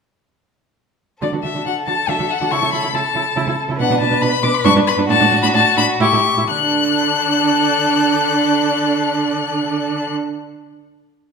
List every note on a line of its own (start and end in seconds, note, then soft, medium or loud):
1.21 1.26 D3 medium
1.21 1.26 F#4 medium
1.21 3.76 A4 soft
1.21 1.30 D5 medium
1.33 1.37 D3 soft
1.33 1.37 F#4 soft
1.43 1.48 D3 soft
1.43 1.48 F#4 soft
1.43 1.64 E5 medium
1.55 1.59 D3 soft
1.55 1.59 F#4 soft
1.65 1.70 D3 medium
1.65 1.70 F#4 medium
1.65 1.74 F#5 medium
1.87 1.91 D3 soft
1.87 1.92 F#4 soft
1.87 2.10 A5 medium
2.08 2.12 D3 medium
2.08 2.13 F#4 medium
2.08 2.31 E5 medium
2.19 2.23 D3 soft
2.19 2.24 F#4 soft
2.30 2.53 F#5 medium
2.41 2.45 D3 soft
2.41 2.45 F#4 soft
2.51 2.55 C#3 medium
2.51 2.56 E4 medium
2.51 2.72 C#6 medium
2.62 2.66 C#3 soft
2.62 2.66 E4 soft
2.72 2.77 C#3 soft
2.72 2.77 E4 soft
2.72 2.96 B5 medium
2.83 2.87 C#3 soft
2.83 2.88 E4 soft
2.93 2.98 C#3 medium
2.93 2.98 E4 medium
2.93 3.58 A5 medium
3.15 3.19 C#3 soft
3.15 3.20 E4 soft
3.36 3.40 C#3 medium
3.36 3.41 E4 medium
3.47 3.51 C#3 soft
3.47 3.52 E4 soft
3.68 3.73 C#3 medium
3.68 3.74 E4 soft
3.79 3.83 B2 medium
3.79 3.84 D4 medium
3.79 5.06 B4 medium
3.79 3.99 F#5 medium
3.90 3.94 B2 medium
3.90 3.95 D4 medium
4.00 4.04 B2 medium
4.00 4.06 D4 medium
4.00 4.23 A5 medium
4.10 4.15 B2 medium
4.10 4.15 D4 medium
4.21 4.26 B2 medium
4.21 4.26 D4 medium
4.21 4.44 B5 medium
4.43 4.47 B2 medium
4.43 4.47 D4 medium
4.43 4.56 D6 medium
4.54 4.64 B5 medium
4.65 4.69 G2 medium
4.65 4.69 D4 medium
4.65 4.73 C#6 loud
4.76 4.80 G2 medium
4.76 4.80 D4 medium
4.87 4.95 B5 medium
4.97 5.02 G2 medium
4.97 5.03 D4 medium
5.08 5.13 A2 medium
5.08 5.14 D4 medium
5.08 6.02 F#4 medium
5.08 5.42 A5 medium
5.20 5.25 A2 medium
5.20 5.25 D4 medium
5.31 5.36 A2 medium
5.31 5.36 D4 medium
5.43 5.47 A2 medium
5.43 5.47 D4 medium
5.43 5.47 B5 loud
5.54 5.59 A2 medium
5.54 5.58 D4 medium
5.54 5.77 A5 loud
5.77 5.82 A2 medium
5.77 5.82 D4 medium
5.77 5.86 B5 loud
6.00 6.05 A2 medium
6.00 6.05 E4 medium
6.00 6.27 G4 medium
6.00 6.48 C#6 medium
6.13 6.17 A2 medium
6.13 6.18 E4 medium
6.37 6.42 A2 medium
6.37 6.42 E4 medium
6.49 10.10 D3 medium
6.49 10.11 D4 medium
6.49 10.10 A4 medium
6.49 10.11 F#6 medium